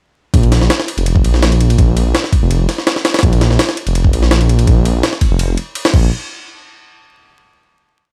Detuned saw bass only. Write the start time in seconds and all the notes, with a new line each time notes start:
0.34 A#1
0.61 A#1
0.97 F1
1.24 A#1
1.78 A#1
2.06 A#1
2.42 F1
3.23 A#1
3.50 A#1
3.87 F1
4.13 A#1
4.67 A#1
4.95 A#1
5.31 F1
5.94 A#1